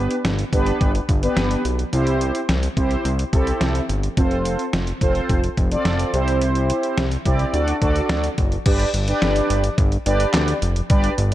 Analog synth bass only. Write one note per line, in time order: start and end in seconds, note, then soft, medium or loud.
0.24 0.44 G1 loud
0.53 0.72 G1 loud
0.81 1.00 G1 loud
1.09 1.28 G1 loud
1.37 1.56 G1 loud
1.65 1.85 B1 medium
1.93 2.32 C2 loud
2.49 2.69 C2 loud
2.77 2.97 C2 loud
3.05 3.25 C2 loud
3.33 3.53 C2 loud
3.61 3.81 C2 loud
3.89 4.09 G1 medium
4.17 4.56 F1 loud
4.73 4.93 F1 loud
5.01 5.21 F1 loud
5.29 5.49 F1 loud
5.57 5.77 F1 loud
5.85 6.05 F1 loud
6.13 6.72 C2 loud
6.98 7.17 C2 loud
7.25 7.45 C2 loud
7.54 7.73 D2 loud
7.82 8.01 D2 loud
8.09 8.29 D2 loud
8.38 8.58 F#1 medium
8.66 8.85 G1 loud
8.94 9.13 G1 loud
9.22 9.41 G1 loud
9.50 9.70 G1 loud
9.78 9.98 G1 loud
10.06 10.26 G1 loud
10.34 10.54 D2 loud
10.62 10.82 F1 medium
10.90 11.10 G1 loud
11.18 11.34 G1 loud